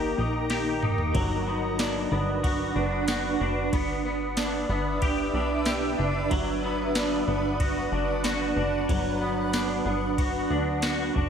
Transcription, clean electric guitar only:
Already playing: A#3 D#4 G4
0.18 D#4
0.50 G4
0.83 D#4
1.14 F#3
1.47 B3
1.79 D4
2.11 B3
2.44 F#4
2.76 D4
3.08 F#4
3.41 D4
3.73 B3
4.05 B3
4.37 D4
4.70 B3
5.02 G4
5.35 D4
5.67 G4
5.99 D4
6.31 F#3
6.63 B3
6.96 D4
7.28 B3
7.60 F#4
7.92 D4
8.24 F#4
8.57 D4
8.89 F#3
9.21 B3
9.53 D4
9.86 B3
10.18 F#4
10.51 D4
10.83 F#4
11.14 D4

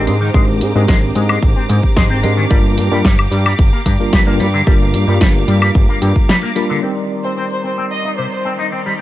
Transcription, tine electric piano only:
Already playing: G#3 C4 D4 G4 A#4
0.34 G#3 C4 D4 G4 A#4
0.74 G#3 C4 D4 G4 A#4
2.23 G#3 C4 D4 G4 A#4
2.50 G3 A#3 D4 F4 A#4
2.91 G3 A#3 D4 F4 A#4
4.00 G3 A#3 D4 F4 A#4
4.27 G3 A#3 D4 F4 A#4
4.67 G3 A#3 D4 F4 A#4
5.07 G3 A#3 D4 F4 A#4
6.55 G3 A#3 D4 F4 A#4
6.82 G3 C4 D#4 A#4 D5

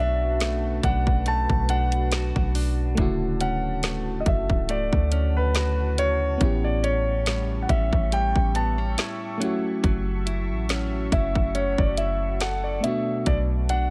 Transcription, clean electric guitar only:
Already playing: B2 D4
0.41 A3
0.84 D4
1.26 A3
1.69 D4
2.12 F#4
2.55 D4
2.98 D3
3.41 C#4
3.84 A3
4.69 A3
5.12 C#4
5.55 F#4
5.98 C#4
6.41 A2
6.83 C#4
7.26 G3
7.69 C#4
8.12 G3
8.55 B3
8.78 C#4
8.98 E4
9.40 F#3
9.83 F#3
10.26 E4
10.69 C#4
11.12 E4
11.55 C#4
11.98 E4
12.41 A4
12.84 B2
13.27 B2
13.70 D4

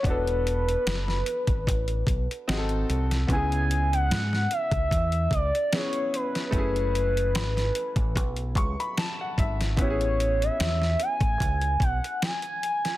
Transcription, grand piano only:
0.03 B3 D4
0.07 F#4 A4
2.48 C4 D#4 F#4 G#4
2.58 A4
3.27 C#3 B3
3.32 E4 G#4
5.72 B3 C#4 E4 G#4
6.51 A3 C#4
6.56 E4 G#4
8.58 C#6
8.80 B5
8.99 A5
9.21 F#5
9.39 E5
9.76 B3 C#4
9.81 E4 G4
9.90 G#4

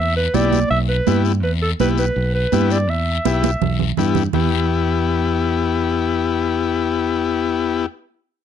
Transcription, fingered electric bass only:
Already playing: E2
0.34 B1
0.71 B1
1.07 G2
1.43 E2
1.80 B1
2.16 B1
2.52 G2
2.89 E2
3.25 B1
3.61 B1
3.98 G2
4.34 E2

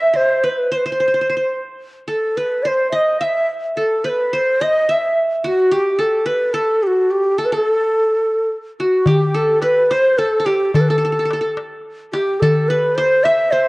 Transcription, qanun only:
Already playing: C5 E5
0.13 C5
0.43 B4
0.72 C5
0.86 C5
0.92 C5
1.00 C5
1.08 C5
1.14 C5
1.21 C5
1.30 C5
1.37 C5
2.08 A4
2.37 B4
2.65 C5
2.92 D#5
3.21 E5
3.77 A4
4.04 B4
4.33 C5
4.61 D#5
4.89 E5
5.44 F#4
5.71 G4
5.99 A4
6.26 B4
6.54 A4
7.38 A4
7.52 A4
8.80 F#4
9.07 G4
9.35 A4
9.62 B4
9.91 C5
10.18 A4
10.40 A4
10.46 G4
10.75 A4
10.90 A4
10.98 A4
11.05 A4
11.12 A4
11.19 A4
11.25 A4
11.33 A4
11.41 A4
12.13 G4
12.43 A4
12.70 B4
12.98 C5
13.25 E5
13.52 C5

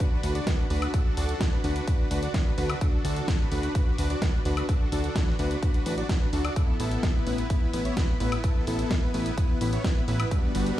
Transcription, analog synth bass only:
0.23 D2
0.70 D2
1.17 D2
1.64 D2
2.11 D2
2.58 D2
3.05 D2
3.52 D2
3.99 D2
4.45 D2
4.92 D2
5.39 D2
5.86 A1
6.33 D2
6.80 A1
7.27 A1
7.73 A1
8.20 A1
8.67 A1
9.14 A1
9.61 A1
10.08 A1
10.55 G1

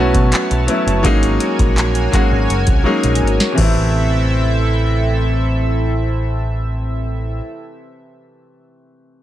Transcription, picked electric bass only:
Already playing: B1
0.14 B2
0.33 muted picked electric bass stroke
0.51 B1
0.87 F#1
1.05 G#1
1.59 A#1
2.31 G#1
2.50 F#1
2.68 C2
3.04 A#1
3.22 G#1
3.58 A1

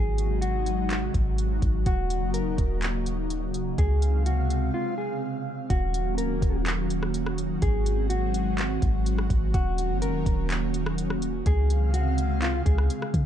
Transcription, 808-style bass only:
Already playing: G#1
1.14 G#1
1.62 G#1
1.86 D#1
2.22 F#1
2.40 D#1
2.58 D#1
3.78 C#2
5.70 D#1
6.18 C#1
6.30 D#1
6.42 D#1
7.62 G#1
8.82 G#1
9.30 G#1
9.90 F#1
10.08 D#1
10.26 D#1
11.46 C#2
12.66 C#2
13.14 C#3

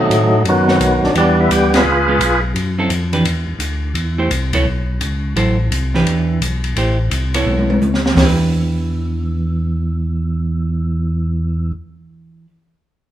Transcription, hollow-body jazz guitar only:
Already playing: D#3 A3 C4
0.68 D#3 A3 C4
1.15 E3 B3 D4 G4
2.08 G#3 B3 F4
2.78 F#3 C4 E4 A4
3.13 E3 D4 G4 B4
4.18 A3 E4 G4 C5
4.54 B3 E4 A4 C#5
5.36 F#3 E4 A4 C5
5.95 E3 D4 G4 B4
6.77 A3 E4 G4 C5
7.34 B3 E4 A4 C#5
8.14 E3
8.18 D4 G4
8.25 B4

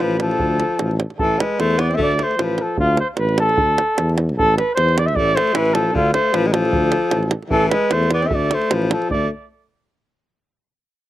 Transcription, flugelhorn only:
0.01 B4
0.22 A4
1.19 A4
1.40 B4
1.60 C5
1.80 D5
1.94 E5
2.02 D5
2.23 C5
2.42 B4
2.62 A4
2.80 F4
3.00 C5
3.18 B4
3.40 A4
4.38 A4
4.57 B4
4.75 C5
4.98 D5
5.06 E5
5.16 D5
5.36 C5
5.56 B4
5.74 A4
5.95 F4
6.13 C5
6.35 B4
6.46 B4
6.53 A4
7.51 A4
7.69 B4
7.92 C5
8.13 D5
8.26 E5
8.35 D5
8.54 C5
8.74 B4
8.92 A4
9.11 D5

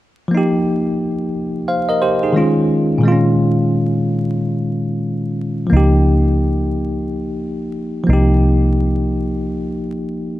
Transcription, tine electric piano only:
0.28 F3 A#3
0.35 D#4 G4
1.68 C5 F5
1.89 A#4 D#5
2.02 G4 C5
2.23 D#4 G#4
2.33 D#3 G#3 C#4
2.38 F4
2.98 A#2 D#3
3.03 G#3 C4
3.08 F4
3.12 C#4
5.67 F3 A#3
5.73 D#4 G4
8.04 F3 A#3
8.10 D#4 G4

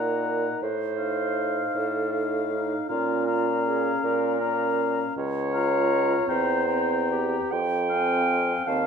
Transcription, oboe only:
Already playing: F#5
0.98 F5
2.12 F5
2.89 F5
3.27 F5
4.40 F5
5.53 F5
6.29 G5
6.67 G5
7.89 F5
8.65 F5

